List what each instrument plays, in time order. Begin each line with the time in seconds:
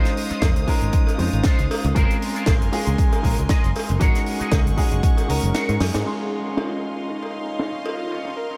Already playing: grand piano G#3 C#4 D#4 F4 C5, clean electric guitar D#4 F4 C5, violin section C5 F5 D#6
0.05 snare, closed hi-hat
0.17 open hi-hat
0.30 clean electric guitar D#4 F4 C5, muted picked electric bass stroke, closed hi-hat
0.42 picked electric bass F2, kick, snare, closed hi-hat, cowbell
0.56 picked electric bass C#2, closed hi-hat
0.67 grand piano G#3 C#4 D#4 F4 A#4, muted clean electric guitar stroke, kick, open hi-hat
0.82 picked electric bass G#1, muted clean electric guitar stroke, closed hi-hat
0.93 muted clean electric guitar stroke, kick, closed hi-hat
1.07 closed hi-hat, cowbell
1.18 picked electric bass F2, grand piano G#3 C#4 D#4 F4 C5, open hi-hat
1.33 picked electric bass G#1, closed hi-hat
1.43 clean electric guitar D#4 F4 C5, kick, snare, closed hi-hat
1.59 picked electric bass C#2, closed hi-hat
1.71 open hi-hat, cowbell
1.84 picked electric bass C#2, muted clean electric guitar stroke, closed hi-hat
1.95 picked electric bass F#1, grand piano G#3 C4 C#4 F4 A#4, clean electric guitar F4 G#4 A#4 C5, violin section A#4 G#5 C6, kick, closed hi-hat
2.10 closed hi-hat
2.22 open hi-hat
2.35 clean electric guitar F4 G#4 A#4 C5, closed hi-hat
2.46 picked electric bass A#1, kick, snare, closed hi-hat, cowbell
2.61 picked electric bass F#1, closed hi-hat
2.72 grand piano G#3 C#4 F4 G#4, muted clean electric guitar stroke, open hi-hat
2.86 picked electric bass C#2, muted clean electric guitar stroke, closed hi-hat
2.98 kick, closed hi-hat
3.12 closed hi-hat, cowbell
3.23 picked electric bass A#1, grand piano G#3 C#4 F4 A#4, kick, open hi-hat
3.38 picked electric bass C#2, closed hi-hat
3.49 clean electric guitar F4 G#4 A#4 D#5, kick, snare, closed hi-hat
3.64 picked electric bass F#1, closed hi-hat
3.75 open hi-hat, cowbell
3.89 picked electric bass F#1, muted clean electric guitar stroke, closed hi-hat
4.00 picked electric bass G#1, grand piano G#3 C#4 D#4 F#4 A#4, clean electric guitar F#4 G#4 C#5, violin section G#4 F#5 C#6, kick, closed hi-hat
4.15 snare, closed hi-hat
4.26 open hi-hat
4.40 clean electric guitar F#4 G#4 D#5, muted picked electric bass stroke, closed hi-hat
4.52 picked electric bass C#2, kick, snare, closed hi-hat, cowbell
4.66 picked electric bass G#1, closed hi-hat
4.77 grand piano G#3 C#4 D#4 F#4 G#4, muted clean electric guitar stroke, kick, open hi-hat
4.91 picked electric bass F#1, muted clean electric guitar stroke, closed hi-hat
5.02 muted clean electric guitar stroke, kick, closed hi-hat
5.17 closed hi-hat, cowbell
5.28 picked electric bass C#2, grand piano G#3 C#4 D#4 F#4 A#4, analog synth lead A#4, open hi-hat
5.43 picked electric bass F#1, closed hi-hat
5.53 clean electric guitar F#4 G#4 C#5, snare, closed hi-hat
5.69 picked electric bass G#2, closed hi-hat
5.80 picked electric bass F#2, analog synth lead G#4, snare, open hi-hat, cowbell
5.93 picked electric bass G#2, muted clean electric guitar stroke, snare, closed hi-hat
6.05 grand piano G#3 C#4 D#4 F4 C6, violin section C#4 D#5 F5 C6, clean electric guitar D#4 F4 C5 C#5, closed hi-hat
6.20 closed hi-hat
6.32 closed hi-hat
6.45 clean electric guitar D#4 F4 C5 C#5, closed hi-hat
6.57 analog synth lead F4, snare, closed hi-hat, cowbell
6.72 closed hi-hat
6.83 closed hi-hat
6.96 muted clean electric guitar stroke, closed hi-hat
7.08 clean electric guitar D#4 F4 C5 C#5, analog synth lead D#4, closed hi-hat
7.22 closed hi-hat, cowbell
7.33 muted clean electric guitar stroke
7.48 closed hi-hat
7.59 clean electric guitar D#4 F4 C5 C#5, snare, closed hi-hat
7.74 closed hi-hat
7.85 analog synth lead F4, closed hi-hat, cowbell
8.00 closed hi-hat
8.10 clean electric guitar D#4 F4 C5 C#5, closed hi-hat
8.25 snare, closed hi-hat
8.36 analog synth lead A#4, closed hi-hat
8.50 clean electric guitar D#4 F4 C5 C#5, closed hi-hat